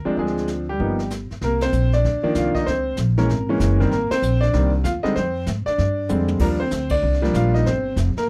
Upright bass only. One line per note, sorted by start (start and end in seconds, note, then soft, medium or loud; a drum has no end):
0.06 muted upright bass stroke soft
0.17 0.77 D2 medium
0.80 1.27 G1 medium
1.31 muted upright bass stroke soft
1.42 1.72 C2 medium
1.73 2.03 A#1 medium
2.04 2.23 D2 medium
2.24 muted upright bass stroke soft
2.35 2.54 C2 medium
2.55 muted upright bass stroke soft
2.68 2.98 C#2 medium
2.98 3.28 A#1 medium
3.29 3.59 G#1 medium
3.60 3.90 F#1 medium
3.91 4.09 G#1 medium
4.11 muted upright bass stroke soft
4.22 4.53 A#1 medium
4.53 4.84 C2 medium
4.84 5.03 D#2 medium
5.04 muted upright bass stroke soft
5.16 5.46 F2 medium
5.47 5.65 G#2 medium
5.67 muted upright bass stroke soft
5.79 6.09 G2 medium
6.10 6.39 F2 medium
6.40 6.71 D#2 medium
6.72 7.02 D2 medium
7.03 7.33 C2 medium
7.34 7.64 A#1 medium
7.65 7.96 G1 medium
7.96 8.15 F1 medium
8.16 muted upright bass stroke soft